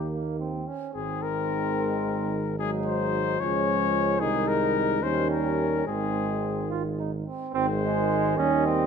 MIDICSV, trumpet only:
0, 0, Header, 1, 2, 480
1, 0, Start_track
1, 0, Key_signature, -4, "major"
1, 0, Tempo, 545951
1, 840, Time_signature, 6, 3, 24, 8
1, 4665, Tempo, 556070
1, 7736, End_track
2, 0, Start_track
2, 0, Title_t, "Trumpet"
2, 0, Program_c, 0, 56
2, 832, Note_on_c, 0, 68, 55
2, 1076, Note_on_c, 0, 70, 66
2, 1089, Note_off_c, 0, 68, 0
2, 2270, Note_off_c, 0, 70, 0
2, 2275, Note_on_c, 0, 68, 60
2, 2383, Note_off_c, 0, 68, 0
2, 2512, Note_on_c, 0, 72, 64
2, 2986, Note_on_c, 0, 73, 78
2, 2999, Note_off_c, 0, 72, 0
2, 3692, Note_on_c, 0, 68, 71
2, 3705, Note_off_c, 0, 73, 0
2, 3938, Note_on_c, 0, 70, 78
2, 3951, Note_off_c, 0, 68, 0
2, 4423, Note_on_c, 0, 72, 67
2, 4436, Note_off_c, 0, 70, 0
2, 4660, Note_off_c, 0, 72, 0
2, 4665, Note_on_c, 0, 70, 62
2, 5142, Note_off_c, 0, 70, 0
2, 5156, Note_on_c, 0, 68, 63
2, 5864, Note_off_c, 0, 68, 0
2, 6597, Note_on_c, 0, 72, 64
2, 7319, Note_on_c, 0, 75, 61
2, 7332, Note_off_c, 0, 72, 0
2, 7736, Note_off_c, 0, 75, 0
2, 7736, End_track
0, 0, End_of_file